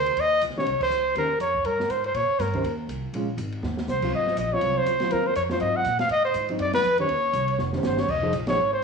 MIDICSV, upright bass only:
0, 0, Header, 1, 3, 480
1, 0, Start_track
1, 0, Tempo, 247321
1, 320, Time_signature, 4, 2, 24, 8
1, 17151, End_track
2, 0, Start_track
2, 0, Title_t, "Upright bass"
2, 0, Program_c, 0, 32
2, 0, Note_on_c, 0, 38, 87
2, 297, Note_off_c, 0, 38, 0
2, 313, Note_on_c, 0, 39, 64
2, 781, Note_off_c, 0, 39, 0
2, 813, Note_on_c, 0, 37, 80
2, 1063, Note_off_c, 0, 37, 0
2, 1283, Note_on_c, 0, 36, 77
2, 1537, Note_off_c, 0, 36, 0
2, 1748, Note_on_c, 0, 37, 73
2, 2219, Note_off_c, 0, 37, 0
2, 2231, Note_on_c, 0, 39, 70
2, 2689, Note_off_c, 0, 39, 0
2, 2701, Note_on_c, 0, 41, 82
2, 3175, Note_off_c, 0, 41, 0
2, 3185, Note_on_c, 0, 43, 79
2, 3657, Note_off_c, 0, 43, 0
2, 3666, Note_on_c, 0, 44, 69
2, 4138, Note_off_c, 0, 44, 0
2, 4149, Note_on_c, 0, 46, 75
2, 4410, Note_off_c, 0, 46, 0
2, 4632, Note_on_c, 0, 43, 85
2, 5101, Note_off_c, 0, 43, 0
2, 5110, Note_on_c, 0, 39, 84
2, 5569, Note_off_c, 0, 39, 0
2, 5581, Note_on_c, 0, 36, 67
2, 6055, Note_off_c, 0, 36, 0
2, 6073, Note_on_c, 0, 34, 70
2, 6536, Note_off_c, 0, 34, 0
2, 6548, Note_on_c, 0, 32, 90
2, 7019, Note_off_c, 0, 32, 0
2, 7037, Note_on_c, 0, 39, 86
2, 7504, Note_off_c, 0, 39, 0
2, 7518, Note_on_c, 0, 36, 73
2, 7984, Note_off_c, 0, 36, 0
2, 8000, Note_on_c, 0, 32, 69
2, 8465, Note_off_c, 0, 32, 0
2, 8481, Note_on_c, 0, 34, 87
2, 8946, Note_off_c, 0, 34, 0
2, 8956, Note_on_c, 0, 36, 80
2, 9415, Note_off_c, 0, 36, 0
2, 9427, Note_on_c, 0, 37, 80
2, 9899, Note_off_c, 0, 37, 0
2, 9931, Note_on_c, 0, 39, 77
2, 10382, Note_off_c, 0, 39, 0
2, 10394, Note_on_c, 0, 41, 84
2, 10862, Note_off_c, 0, 41, 0
2, 10894, Note_on_c, 0, 44, 81
2, 11353, Note_off_c, 0, 44, 0
2, 11362, Note_on_c, 0, 46, 76
2, 11815, Note_off_c, 0, 46, 0
2, 11827, Note_on_c, 0, 45, 74
2, 12299, Note_off_c, 0, 45, 0
2, 12311, Note_on_c, 0, 44, 84
2, 12781, Note_off_c, 0, 44, 0
2, 12793, Note_on_c, 0, 42, 94
2, 13262, Note_off_c, 0, 42, 0
2, 13271, Note_on_c, 0, 41, 82
2, 13741, Note_off_c, 0, 41, 0
2, 13755, Note_on_c, 0, 39, 78
2, 14220, Note_off_c, 0, 39, 0
2, 14231, Note_on_c, 0, 36, 92
2, 14702, Note_off_c, 0, 36, 0
2, 14736, Note_on_c, 0, 29, 86
2, 15195, Note_off_c, 0, 29, 0
2, 15212, Note_on_c, 0, 31, 77
2, 15672, Note_off_c, 0, 31, 0
2, 15692, Note_on_c, 0, 29, 75
2, 16152, Note_off_c, 0, 29, 0
2, 16161, Note_on_c, 0, 34, 92
2, 16627, Note_off_c, 0, 34, 0
2, 16645, Note_on_c, 0, 32, 72
2, 17109, Note_off_c, 0, 32, 0
2, 17151, End_track
3, 0, Start_track
3, 0, Title_t, "Muted upright bass strokes"
3, 1077, Note_on_c, 9, 29, 39
3, 1271, Note_off_c, 9, 29, 0
3, 1556, Note_on_c, 9, 29, 35
3, 1750, Note_off_c, 9, 29, 0
3, 4433, Note_on_c, 9, 29, 40
3, 4627, Note_off_c, 9, 29, 0
3, 17151, End_track
0, 0, End_of_file